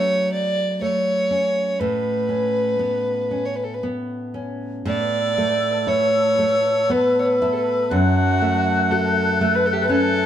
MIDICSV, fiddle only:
0, 0, Header, 1, 2, 480
1, 0, Start_track
1, 0, Tempo, 986842
1, 872, Time_signature, 3, 2, 24, 8
1, 1360, Tempo, 1022147
1, 3760, Tempo, 988468
1, 4902, End_track
2, 0, Start_track
2, 0, Title_t, "Fiddle"
2, 0, Program_c, 0, 110
2, 0, Note_on_c, 0, 73, 83
2, 154, Note_off_c, 0, 73, 0
2, 157, Note_on_c, 0, 74, 79
2, 378, Note_off_c, 0, 74, 0
2, 402, Note_on_c, 0, 73, 83
2, 870, Note_on_c, 0, 71, 72
2, 877, Note_off_c, 0, 73, 0
2, 1668, Note_on_c, 0, 73, 50
2, 1675, Note_off_c, 0, 71, 0
2, 1714, Note_on_c, 0, 71, 48
2, 1721, Note_off_c, 0, 73, 0
2, 1754, Note_on_c, 0, 69, 47
2, 1761, Note_off_c, 0, 71, 0
2, 1801, Note_on_c, 0, 71, 47
2, 1808, Note_off_c, 0, 69, 0
2, 1844, Note_off_c, 0, 71, 0
2, 2337, Note_on_c, 0, 74, 86
2, 2805, Note_on_c, 0, 73, 82
2, 2812, Note_off_c, 0, 74, 0
2, 3292, Note_on_c, 0, 71, 84
2, 3299, Note_off_c, 0, 73, 0
2, 3423, Note_on_c, 0, 73, 50
2, 3430, Note_off_c, 0, 71, 0
2, 3435, Note_on_c, 0, 71, 74
2, 3443, Note_off_c, 0, 73, 0
2, 3578, Note_on_c, 0, 69, 54
2, 3585, Note_off_c, 0, 71, 0
2, 3593, Note_on_c, 0, 71, 78
2, 3600, Note_off_c, 0, 69, 0
2, 3762, Note_on_c, 0, 66, 87
2, 3769, Note_off_c, 0, 71, 0
2, 4247, Note_on_c, 0, 69, 84
2, 4254, Note_off_c, 0, 66, 0
2, 4557, Note_on_c, 0, 71, 76
2, 4564, Note_off_c, 0, 69, 0
2, 4609, Note_on_c, 0, 69, 72
2, 4616, Note_off_c, 0, 71, 0
2, 4644, Note_on_c, 0, 67, 68
2, 4651, Note_off_c, 0, 69, 0
2, 4687, Note_on_c, 0, 69, 68
2, 4694, Note_off_c, 0, 67, 0
2, 4695, Note_on_c, 0, 71, 61
2, 4696, Note_off_c, 0, 69, 0
2, 4726, Note_on_c, 0, 69, 93
2, 4733, Note_off_c, 0, 71, 0
2, 4902, Note_off_c, 0, 69, 0
2, 4902, End_track
0, 0, End_of_file